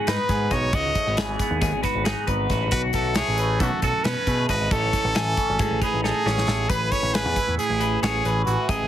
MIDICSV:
0, 0, Header, 1, 6, 480
1, 0, Start_track
1, 0, Tempo, 441826
1, 796, Time_signature, 9, 3, 24, 8
1, 9644, End_track
2, 0, Start_track
2, 0, Title_t, "Clean electric guitar"
2, 0, Program_c, 0, 27
2, 78, Note_on_c, 0, 71, 84
2, 315, Note_on_c, 0, 68, 84
2, 317, Note_off_c, 0, 71, 0
2, 552, Note_on_c, 0, 75, 78
2, 556, Note_off_c, 0, 68, 0
2, 792, Note_off_c, 0, 75, 0
2, 792, Note_on_c, 0, 73, 85
2, 1269, Note_off_c, 0, 73, 0
2, 1273, Note_on_c, 0, 68, 75
2, 1739, Note_off_c, 0, 68, 0
2, 1752, Note_on_c, 0, 68, 98
2, 1981, Note_off_c, 0, 68, 0
2, 1985, Note_on_c, 0, 71, 76
2, 2223, Note_off_c, 0, 71, 0
2, 2227, Note_on_c, 0, 68, 84
2, 2464, Note_off_c, 0, 68, 0
2, 2468, Note_on_c, 0, 71, 85
2, 2948, Note_on_c, 0, 66, 85
2, 2951, Note_off_c, 0, 71, 0
2, 3431, Note_off_c, 0, 66, 0
2, 3441, Note_on_c, 0, 73, 76
2, 3677, Note_off_c, 0, 73, 0
2, 3685, Note_on_c, 0, 71, 78
2, 3906, Note_off_c, 0, 71, 0
2, 3911, Note_on_c, 0, 69, 96
2, 4393, Note_off_c, 0, 69, 0
2, 4400, Note_on_c, 0, 71, 86
2, 4638, Note_off_c, 0, 71, 0
2, 4638, Note_on_c, 0, 68, 87
2, 4877, Note_off_c, 0, 68, 0
2, 4884, Note_on_c, 0, 75, 74
2, 5117, Note_off_c, 0, 75, 0
2, 5117, Note_on_c, 0, 73, 89
2, 5596, Note_off_c, 0, 73, 0
2, 5600, Note_on_c, 0, 80, 84
2, 6078, Note_off_c, 0, 80, 0
2, 6086, Note_on_c, 0, 68, 94
2, 6327, Note_off_c, 0, 68, 0
2, 6327, Note_on_c, 0, 71, 72
2, 6557, Note_off_c, 0, 71, 0
2, 6561, Note_on_c, 0, 69, 80
2, 6799, Note_off_c, 0, 69, 0
2, 6799, Note_on_c, 0, 73, 81
2, 7273, Note_on_c, 0, 71, 86
2, 7278, Note_off_c, 0, 73, 0
2, 7754, Note_on_c, 0, 68, 82
2, 7755, Note_off_c, 0, 71, 0
2, 7995, Note_off_c, 0, 68, 0
2, 8478, Note_on_c, 0, 71, 73
2, 8717, Note_off_c, 0, 71, 0
2, 8723, Note_on_c, 0, 73, 75
2, 8960, Note_off_c, 0, 73, 0
2, 8969, Note_on_c, 0, 71, 84
2, 9440, Note_off_c, 0, 71, 0
2, 9444, Note_on_c, 0, 75, 84
2, 9644, Note_off_c, 0, 75, 0
2, 9644, End_track
3, 0, Start_track
3, 0, Title_t, "Trumpet"
3, 0, Program_c, 1, 56
3, 91, Note_on_c, 1, 71, 85
3, 564, Note_on_c, 1, 73, 91
3, 581, Note_off_c, 1, 71, 0
3, 810, Note_on_c, 1, 75, 106
3, 827, Note_off_c, 1, 73, 0
3, 1342, Note_off_c, 1, 75, 0
3, 2956, Note_on_c, 1, 71, 107
3, 3063, Note_off_c, 1, 71, 0
3, 3198, Note_on_c, 1, 69, 97
3, 3419, Note_off_c, 1, 69, 0
3, 3443, Note_on_c, 1, 68, 105
3, 3886, Note_off_c, 1, 68, 0
3, 3930, Note_on_c, 1, 66, 92
3, 4146, Note_off_c, 1, 66, 0
3, 4161, Note_on_c, 1, 69, 97
3, 4392, Note_on_c, 1, 71, 105
3, 4408, Note_off_c, 1, 69, 0
3, 4874, Note_off_c, 1, 71, 0
3, 4878, Note_on_c, 1, 71, 96
3, 5123, Note_on_c, 1, 69, 99
3, 5140, Note_off_c, 1, 71, 0
3, 6320, Note_off_c, 1, 69, 0
3, 6330, Note_on_c, 1, 68, 84
3, 6547, Note_off_c, 1, 68, 0
3, 6556, Note_on_c, 1, 68, 94
3, 7273, Note_on_c, 1, 71, 99
3, 7289, Note_off_c, 1, 68, 0
3, 7514, Note_on_c, 1, 73, 102
3, 7530, Note_off_c, 1, 71, 0
3, 7758, Note_on_c, 1, 71, 100
3, 7774, Note_off_c, 1, 73, 0
3, 8226, Note_off_c, 1, 71, 0
3, 8233, Note_on_c, 1, 68, 91
3, 8681, Note_off_c, 1, 68, 0
3, 8711, Note_on_c, 1, 68, 93
3, 9160, Note_off_c, 1, 68, 0
3, 9180, Note_on_c, 1, 66, 85
3, 9444, Note_on_c, 1, 68, 90
3, 9460, Note_off_c, 1, 66, 0
3, 9644, Note_off_c, 1, 68, 0
3, 9644, End_track
4, 0, Start_track
4, 0, Title_t, "Clean electric guitar"
4, 0, Program_c, 2, 27
4, 0, Note_on_c, 2, 44, 67
4, 0, Note_on_c, 2, 59, 59
4, 0, Note_on_c, 2, 66, 63
4, 86, Note_on_c, 2, 63, 61
4, 323, Note_off_c, 2, 59, 0
4, 327, Note_on_c, 2, 59, 61
4, 553, Note_off_c, 2, 44, 0
4, 564, Note_on_c, 2, 44, 70
4, 570, Note_off_c, 2, 66, 0
4, 574, Note_on_c, 2, 66, 51
4, 772, Note_off_c, 2, 44, 0
4, 772, Note_off_c, 2, 63, 0
4, 798, Note_on_c, 2, 44, 76
4, 806, Note_off_c, 2, 66, 0
4, 811, Note_on_c, 2, 66, 68
4, 1038, Note_off_c, 2, 59, 0
4, 1042, Note_on_c, 2, 57, 62
4, 1173, Note_off_c, 2, 57, 0
4, 1173, Note_on_c, 2, 59, 55
4, 1285, Note_on_c, 2, 52, 64
4, 1524, Note_off_c, 2, 59, 0
4, 1535, Note_on_c, 2, 59, 58
4, 1756, Note_off_c, 2, 44, 0
4, 1769, Note_on_c, 2, 44, 66
4, 1992, Note_off_c, 2, 66, 0
4, 2005, Note_on_c, 2, 66, 62
4, 2247, Note_on_c, 2, 63, 63
4, 2476, Note_off_c, 2, 59, 0
4, 2481, Note_on_c, 2, 59, 57
4, 2709, Note_off_c, 2, 44, 0
4, 2716, Note_off_c, 2, 66, 0
4, 2722, Note_on_c, 2, 44, 74
4, 2729, Note_on_c, 2, 66, 61
4, 2929, Note_off_c, 2, 44, 0
4, 2932, Note_off_c, 2, 63, 0
4, 2962, Note_off_c, 2, 66, 0
4, 2967, Note_on_c, 2, 47, 73
4, 2976, Note_on_c, 2, 66, 67
4, 3208, Note_off_c, 2, 59, 0
4, 3212, Note_on_c, 2, 57, 60
4, 3441, Note_off_c, 2, 47, 0
4, 3441, Note_off_c, 2, 52, 0
4, 3446, Note_on_c, 2, 52, 67
4, 3683, Note_off_c, 2, 57, 0
4, 3687, Note_on_c, 2, 57, 59
4, 3912, Note_on_c, 2, 42, 63
4, 4155, Note_off_c, 2, 66, 0
4, 4168, Note_on_c, 2, 66, 67
4, 4409, Note_on_c, 2, 61, 59
4, 4643, Note_off_c, 2, 57, 0
4, 4647, Note_on_c, 2, 57, 57
4, 4870, Note_off_c, 2, 66, 0
4, 4874, Note_off_c, 2, 42, 0
4, 4880, Note_on_c, 2, 47, 65
4, 4890, Note_on_c, 2, 66, 50
4, 5119, Note_off_c, 2, 47, 0
4, 5119, Note_off_c, 2, 66, 0
4, 5120, Note_on_c, 2, 45, 75
4, 5128, Note_off_c, 2, 52, 0
4, 5132, Note_on_c, 2, 52, 67
4, 5135, Note_off_c, 2, 57, 0
4, 5139, Note_off_c, 2, 61, 0
4, 5139, Note_on_c, 2, 61, 58
4, 5143, Note_on_c, 2, 63, 64
4, 5366, Note_off_c, 2, 61, 0
4, 5378, Note_on_c, 2, 61, 56
4, 5585, Note_off_c, 2, 52, 0
4, 5598, Note_on_c, 2, 52, 63
4, 5832, Note_off_c, 2, 61, 0
4, 5845, Note_on_c, 2, 61, 61
4, 6060, Note_off_c, 2, 45, 0
4, 6073, Note_on_c, 2, 45, 67
4, 6304, Note_off_c, 2, 63, 0
4, 6317, Note_on_c, 2, 63, 56
4, 6550, Note_off_c, 2, 63, 0
4, 6563, Note_on_c, 2, 63, 60
4, 6785, Note_off_c, 2, 61, 0
4, 6798, Note_on_c, 2, 61, 59
4, 7007, Note_off_c, 2, 45, 0
4, 7020, Note_on_c, 2, 45, 68
4, 7038, Note_on_c, 2, 69, 61
4, 7240, Note_off_c, 2, 45, 0
4, 7248, Note_off_c, 2, 69, 0
4, 7249, Note_off_c, 2, 61, 0
4, 7252, Note_off_c, 2, 63, 0
4, 7277, Note_on_c, 2, 45, 68
4, 7288, Note_on_c, 2, 68, 69
4, 7537, Note_on_c, 2, 61, 55
4, 7767, Note_off_c, 2, 68, 0
4, 7772, Note_on_c, 2, 68, 61
4, 8007, Note_on_c, 2, 64, 59
4, 8236, Note_off_c, 2, 45, 0
4, 8240, Note_on_c, 2, 45, 59
4, 8476, Note_off_c, 2, 52, 0
4, 8489, Note_on_c, 2, 52, 58
4, 8719, Note_off_c, 2, 61, 0
4, 8732, Note_on_c, 2, 61, 58
4, 8956, Note_off_c, 2, 52, 0
4, 8969, Note_on_c, 2, 52, 59
4, 9189, Note_off_c, 2, 45, 0
4, 9193, Note_off_c, 2, 64, 0
4, 9202, Note_on_c, 2, 45, 70
4, 9206, Note_on_c, 2, 64, 53
4, 9410, Note_off_c, 2, 45, 0
4, 9413, Note_off_c, 2, 64, 0
4, 9415, Note_off_c, 2, 61, 0
4, 9415, Note_off_c, 2, 68, 0
4, 9432, Note_on_c, 2, 45, 72
4, 9438, Note_on_c, 2, 64, 69
4, 9644, Note_off_c, 2, 45, 0
4, 9644, Note_off_c, 2, 52, 0
4, 9644, Note_off_c, 2, 64, 0
4, 9644, End_track
5, 0, Start_track
5, 0, Title_t, "Picked electric bass"
5, 0, Program_c, 3, 34
5, 84, Note_on_c, 3, 44, 92
5, 179, Note_off_c, 3, 44, 0
5, 318, Note_on_c, 3, 44, 84
5, 513, Note_off_c, 3, 44, 0
5, 561, Note_on_c, 3, 35, 98
5, 755, Note_off_c, 3, 35, 0
5, 796, Note_on_c, 3, 37, 80
5, 992, Note_off_c, 3, 37, 0
5, 1160, Note_on_c, 3, 32, 80
5, 1256, Note_off_c, 3, 32, 0
5, 1278, Note_on_c, 3, 32, 97
5, 1472, Note_off_c, 3, 32, 0
5, 1636, Note_on_c, 3, 39, 92
5, 1734, Note_off_c, 3, 39, 0
5, 1759, Note_on_c, 3, 39, 95
5, 1855, Note_off_c, 3, 39, 0
5, 1874, Note_on_c, 3, 32, 86
5, 1972, Note_off_c, 3, 32, 0
5, 2119, Note_on_c, 3, 32, 91
5, 2313, Note_off_c, 3, 32, 0
5, 2478, Note_on_c, 3, 32, 79
5, 2672, Note_off_c, 3, 32, 0
5, 2721, Note_on_c, 3, 33, 81
5, 2914, Note_off_c, 3, 33, 0
5, 2955, Note_on_c, 3, 35, 103
5, 3150, Note_off_c, 3, 35, 0
5, 3200, Note_on_c, 3, 35, 86
5, 3491, Note_off_c, 3, 35, 0
5, 3563, Note_on_c, 3, 33, 79
5, 3918, Note_off_c, 3, 33, 0
5, 3918, Note_on_c, 3, 35, 94
5, 4015, Note_off_c, 3, 35, 0
5, 4158, Note_on_c, 3, 35, 81
5, 4254, Note_off_c, 3, 35, 0
5, 4401, Note_on_c, 3, 47, 93
5, 4496, Note_off_c, 3, 47, 0
5, 4641, Note_on_c, 3, 47, 83
5, 4834, Note_off_c, 3, 47, 0
5, 4883, Note_on_c, 3, 32, 97
5, 5076, Note_off_c, 3, 32, 0
5, 5123, Note_on_c, 3, 33, 88
5, 5316, Note_off_c, 3, 33, 0
5, 5480, Note_on_c, 3, 33, 89
5, 5576, Note_off_c, 3, 33, 0
5, 5605, Note_on_c, 3, 33, 97
5, 5797, Note_off_c, 3, 33, 0
5, 5967, Note_on_c, 3, 32, 92
5, 6061, Note_off_c, 3, 32, 0
5, 6077, Note_on_c, 3, 32, 91
5, 6175, Note_off_c, 3, 32, 0
5, 6200, Note_on_c, 3, 33, 86
5, 6296, Note_off_c, 3, 33, 0
5, 6448, Note_on_c, 3, 33, 85
5, 6639, Note_off_c, 3, 33, 0
5, 6800, Note_on_c, 3, 33, 76
5, 6994, Note_off_c, 3, 33, 0
5, 7036, Note_on_c, 3, 33, 81
5, 7232, Note_off_c, 3, 33, 0
5, 7278, Note_on_c, 3, 33, 91
5, 7474, Note_off_c, 3, 33, 0
5, 7633, Note_on_c, 3, 33, 94
5, 7880, Note_off_c, 3, 33, 0
5, 7880, Note_on_c, 3, 40, 78
5, 7977, Note_off_c, 3, 40, 0
5, 8124, Note_on_c, 3, 40, 87
5, 8219, Note_off_c, 3, 40, 0
5, 8361, Note_on_c, 3, 33, 71
5, 8653, Note_off_c, 3, 33, 0
5, 8722, Note_on_c, 3, 33, 97
5, 8916, Note_off_c, 3, 33, 0
5, 8957, Note_on_c, 3, 33, 83
5, 9152, Note_off_c, 3, 33, 0
5, 9197, Note_on_c, 3, 33, 83
5, 9295, Note_off_c, 3, 33, 0
5, 9443, Note_on_c, 3, 33, 98
5, 9636, Note_off_c, 3, 33, 0
5, 9644, End_track
6, 0, Start_track
6, 0, Title_t, "Drums"
6, 76, Note_on_c, 9, 42, 89
6, 87, Note_on_c, 9, 38, 104
6, 185, Note_off_c, 9, 42, 0
6, 196, Note_off_c, 9, 38, 0
6, 314, Note_on_c, 9, 42, 63
6, 317, Note_on_c, 9, 36, 76
6, 325, Note_on_c, 9, 38, 32
6, 423, Note_off_c, 9, 42, 0
6, 426, Note_off_c, 9, 36, 0
6, 433, Note_off_c, 9, 38, 0
6, 550, Note_on_c, 9, 42, 65
6, 555, Note_on_c, 9, 36, 78
6, 561, Note_on_c, 9, 38, 33
6, 659, Note_off_c, 9, 42, 0
6, 664, Note_off_c, 9, 36, 0
6, 670, Note_off_c, 9, 38, 0
6, 791, Note_on_c, 9, 42, 89
6, 794, Note_on_c, 9, 36, 119
6, 900, Note_off_c, 9, 42, 0
6, 903, Note_off_c, 9, 36, 0
6, 1034, Note_on_c, 9, 42, 62
6, 1036, Note_on_c, 9, 36, 79
6, 1143, Note_off_c, 9, 42, 0
6, 1145, Note_off_c, 9, 36, 0
6, 1272, Note_on_c, 9, 42, 89
6, 1282, Note_on_c, 9, 38, 105
6, 1380, Note_off_c, 9, 42, 0
6, 1391, Note_off_c, 9, 38, 0
6, 1515, Note_on_c, 9, 36, 75
6, 1515, Note_on_c, 9, 42, 66
6, 1526, Note_on_c, 9, 38, 35
6, 1624, Note_off_c, 9, 36, 0
6, 1624, Note_off_c, 9, 42, 0
6, 1635, Note_off_c, 9, 38, 0
6, 1753, Note_on_c, 9, 42, 90
6, 1756, Note_on_c, 9, 36, 116
6, 1764, Note_on_c, 9, 38, 37
6, 1862, Note_off_c, 9, 42, 0
6, 1865, Note_off_c, 9, 36, 0
6, 1873, Note_off_c, 9, 38, 0
6, 1991, Note_on_c, 9, 42, 69
6, 1995, Note_on_c, 9, 36, 67
6, 2002, Note_on_c, 9, 38, 35
6, 2100, Note_off_c, 9, 42, 0
6, 2104, Note_off_c, 9, 36, 0
6, 2111, Note_off_c, 9, 38, 0
6, 2230, Note_on_c, 9, 42, 97
6, 2241, Note_on_c, 9, 38, 108
6, 2338, Note_off_c, 9, 42, 0
6, 2349, Note_off_c, 9, 38, 0
6, 2471, Note_on_c, 9, 42, 72
6, 2474, Note_on_c, 9, 36, 74
6, 2580, Note_off_c, 9, 42, 0
6, 2583, Note_off_c, 9, 36, 0
6, 2712, Note_on_c, 9, 42, 72
6, 2715, Note_on_c, 9, 36, 80
6, 2722, Note_on_c, 9, 38, 34
6, 2820, Note_off_c, 9, 42, 0
6, 2823, Note_off_c, 9, 36, 0
6, 2831, Note_off_c, 9, 38, 0
6, 2945, Note_on_c, 9, 42, 95
6, 2953, Note_on_c, 9, 36, 110
6, 3054, Note_off_c, 9, 42, 0
6, 3062, Note_off_c, 9, 36, 0
6, 3182, Note_on_c, 9, 42, 69
6, 3192, Note_on_c, 9, 36, 82
6, 3290, Note_off_c, 9, 42, 0
6, 3301, Note_off_c, 9, 36, 0
6, 3417, Note_on_c, 9, 42, 99
6, 3428, Note_on_c, 9, 38, 112
6, 3526, Note_off_c, 9, 42, 0
6, 3537, Note_off_c, 9, 38, 0
6, 3667, Note_on_c, 9, 42, 69
6, 3776, Note_off_c, 9, 42, 0
6, 3910, Note_on_c, 9, 42, 101
6, 3914, Note_on_c, 9, 36, 109
6, 4019, Note_off_c, 9, 42, 0
6, 4022, Note_off_c, 9, 36, 0
6, 4152, Note_on_c, 9, 42, 64
6, 4155, Note_on_c, 9, 36, 71
6, 4260, Note_off_c, 9, 42, 0
6, 4264, Note_off_c, 9, 36, 0
6, 4393, Note_on_c, 9, 42, 85
6, 4403, Note_on_c, 9, 38, 114
6, 4501, Note_off_c, 9, 42, 0
6, 4512, Note_off_c, 9, 38, 0
6, 4637, Note_on_c, 9, 42, 64
6, 4638, Note_on_c, 9, 36, 74
6, 4746, Note_off_c, 9, 42, 0
6, 4747, Note_off_c, 9, 36, 0
6, 4877, Note_on_c, 9, 42, 63
6, 4879, Note_on_c, 9, 36, 77
6, 4986, Note_off_c, 9, 42, 0
6, 4988, Note_off_c, 9, 36, 0
6, 5116, Note_on_c, 9, 42, 86
6, 5119, Note_on_c, 9, 36, 119
6, 5225, Note_off_c, 9, 42, 0
6, 5228, Note_off_c, 9, 36, 0
6, 5358, Note_on_c, 9, 42, 63
6, 5359, Note_on_c, 9, 36, 82
6, 5369, Note_on_c, 9, 38, 32
6, 5467, Note_off_c, 9, 36, 0
6, 5467, Note_off_c, 9, 42, 0
6, 5478, Note_off_c, 9, 38, 0
6, 5594, Note_on_c, 9, 42, 86
6, 5604, Note_on_c, 9, 38, 101
6, 5702, Note_off_c, 9, 42, 0
6, 5713, Note_off_c, 9, 38, 0
6, 5836, Note_on_c, 9, 42, 62
6, 5838, Note_on_c, 9, 36, 78
6, 5945, Note_off_c, 9, 42, 0
6, 5946, Note_off_c, 9, 36, 0
6, 6074, Note_on_c, 9, 42, 96
6, 6078, Note_on_c, 9, 36, 112
6, 6085, Note_on_c, 9, 38, 37
6, 6182, Note_off_c, 9, 42, 0
6, 6187, Note_off_c, 9, 36, 0
6, 6193, Note_off_c, 9, 38, 0
6, 6318, Note_on_c, 9, 36, 72
6, 6319, Note_on_c, 9, 42, 64
6, 6427, Note_off_c, 9, 36, 0
6, 6427, Note_off_c, 9, 42, 0
6, 6565, Note_on_c, 9, 38, 60
6, 6674, Note_off_c, 9, 38, 0
6, 6810, Note_on_c, 9, 38, 70
6, 6919, Note_off_c, 9, 38, 0
6, 6928, Note_on_c, 9, 38, 64
6, 7036, Note_off_c, 9, 38, 0
6, 7041, Note_on_c, 9, 38, 90
6, 7150, Note_off_c, 9, 38, 0
6, 7273, Note_on_c, 9, 42, 105
6, 7275, Note_on_c, 9, 36, 115
6, 7382, Note_off_c, 9, 42, 0
6, 7384, Note_off_c, 9, 36, 0
6, 7513, Note_on_c, 9, 42, 66
6, 7516, Note_on_c, 9, 36, 75
6, 7622, Note_off_c, 9, 42, 0
6, 7624, Note_off_c, 9, 36, 0
6, 7757, Note_on_c, 9, 42, 90
6, 7768, Note_on_c, 9, 38, 106
6, 7865, Note_off_c, 9, 42, 0
6, 7876, Note_off_c, 9, 38, 0
6, 7999, Note_on_c, 9, 36, 74
6, 8000, Note_on_c, 9, 42, 65
6, 8011, Note_on_c, 9, 38, 35
6, 8107, Note_off_c, 9, 36, 0
6, 8108, Note_off_c, 9, 42, 0
6, 8119, Note_off_c, 9, 38, 0
6, 8245, Note_on_c, 9, 42, 95
6, 8353, Note_off_c, 9, 42, 0
6, 8481, Note_on_c, 9, 42, 63
6, 8589, Note_off_c, 9, 42, 0
6, 8722, Note_on_c, 9, 42, 83
6, 8733, Note_on_c, 9, 38, 110
6, 8831, Note_off_c, 9, 42, 0
6, 8842, Note_off_c, 9, 38, 0
6, 8964, Note_on_c, 9, 42, 61
6, 9073, Note_off_c, 9, 42, 0
6, 9202, Note_on_c, 9, 42, 62
6, 9310, Note_off_c, 9, 42, 0
6, 9440, Note_on_c, 9, 36, 115
6, 9440, Note_on_c, 9, 42, 93
6, 9548, Note_off_c, 9, 36, 0
6, 9549, Note_off_c, 9, 42, 0
6, 9644, End_track
0, 0, End_of_file